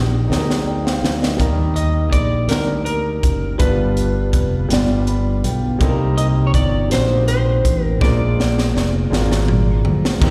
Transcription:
Already playing: A#1 D#3 D#4 G4 A#4
0.28 D2 D#4 G4 G#4
0.32 snare
0.38 A#4
0.51 snare
0.67 D5 G5
0.85 C5 F5, snare
1.03 D2, snare
1.22 A#4 D#5, snare
1.37 D#2 D#3 G3 A#3 D#4 A#4, kick, closed hi-hat
1.76 D#5, closed hi-hat
2.12 A#1 D5, kick, closed hi-hat
2.48 D2 G3 A#3 D4 D#4 G4 A#4, snare, closed hi-hat
2.85 A#4, closed hi-hat
3.23 F#1, kick, closed hi-hat
3.58 G1 G2 G3 B3 D4 F4 B4, kick, closed hi-hat
3.97 closed hi-hat
4.33 F1, kick, closed hi-hat
4.69 G1 G3 B3 D4 F4, closed hi-hat
4.73 D5, snare
5.07 B5, closed hi-hat
5.44 B1 G5, closed hi-hat
5.79 C2 C3 G3 A#3 C4 D#4 A4, kick, closed hi-hat
5.89 A#4
6.18 D#5, closed hi-hat
6.47 C#5
6.54 G1 D5, kick, closed hi-hat
6.90 A#1 G3 A#3 C4 D#4 F#4 C5, snare, closed hi-hat
7.00 G4
7.28 C5, closed hi-hat
7.65 A1, kick, closed hi-hat
7.84 A#4
8.00 A#1 A#2 G#3 A#3 D4 F4 D5, kick, snare
8.04 A#4
8.40 snare
8.59 snare
8.75 F1, snare
9.10 G#1 G#3 A#3 D4 F4 A#4, snare
9.32 snare
9.48 mid tom
9.85 D2, floor tom
10.05 snare
10.20 D#2 D#3 A#3 D#4 G4 C5, kick, crash

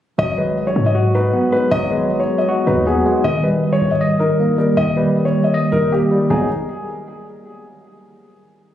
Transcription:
0.18 G#1 F#3 D#5
0.38 G#3 B4
0.67 C#5
0.76 G#2
0.86 D#5
0.95 F#4
1.15 D#4 B4
1.33 B3
1.52 G#3 B4
1.71 G#1 F#3 D#5
1.90 G#3 B4
2.20 C#5
2.38 D#5
2.49 F#4
2.67 D#2 D#4 B4
2.86 B3 G#4
3.06 G#3
3.24 D#1 D#3 D#5
3.43 G3 B4
3.63 G1
3.72 D#1 C#5
3.82 C#1
3.91 D#5
4.01 D#5
4.19 D#4 A#4
4.40 A#3
4.58 G3 A#4
4.77 D#1 D#3 D#5
4.97 G3 B4
5.25 C#5
5.44 D#5
5.54 D#5
5.72 D#1 D#4 A#4
5.92 A#3 G4
6.11 G3
6.30 G#1 F#3 G#3 B3 D#4 G#4

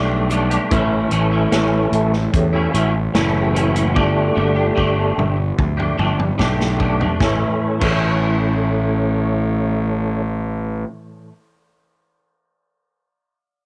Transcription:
Already playing: B1 G3 A3 D4 G4
0.30 G3 A3 D4 G4, closed hi-hat, shaker
0.50 A3 D4 G4, closed hi-hat, shaker
0.70 A1 A2 E3 A3 C#4 E4, kick, closed hi-hat
1.10 A1 E3 A3 C#4 E4, closed hi-hat
1.31 A3 C#4 E4
1.51 A1 A2 E3 A3 C#4 E4, snare, closed hi-hat
1.92 A1 A4, closed hi-hat
2.13 muted clean electric guitar stroke, snare
2.33 E2 E3 A3 C#4 G4, kick, closed hi-hat
2.53 A3 C#4 E4
2.69 F4
2.73 A1 E3 A3 C#4 E4 F#4, closed hi-hat
2.94 muted clean electric guitar stroke
3.14 F#1 A2 E3 A3 C#4 E4 A4, snare, closed hi-hat
3.42 G4
3.54 E3 A3 C#4 E4, closed hi-hat
3.70 E4 F#4
3.76 A3 C#4, closed hi-hat
3.94 G1 G3 A3 D4 E4 G4, kick, high tom
4.24 F#4
4.35 G1 G3 A3 D4 G4, high tom
4.52 G4
4.56 A3 D4
4.75 G1 G3 A3 D4 G4, kick
5.05 A4
5.18 G1, mid tom
5.37 muted clean electric guitar stroke
5.58 D2, kick, mid tom
5.77 A3 D4 G4, mid tom
5.98 G1 G3 A3 D4 G4, mid tom
6.19 muted clean electric guitar stroke, mid tom
6.38 B1 G3 A3 D4 G4, kick, snare
6.60 snare
6.79 G3 A3 D4 G4, kick
7.00 A3 D4 G4, floor tom
7.19 A1 A2 E3 A3 C#4 E4 A4 C#5, kick, snare
7.80 A1 A2 E3 A3 C#4, kick, crash
7.84 E4

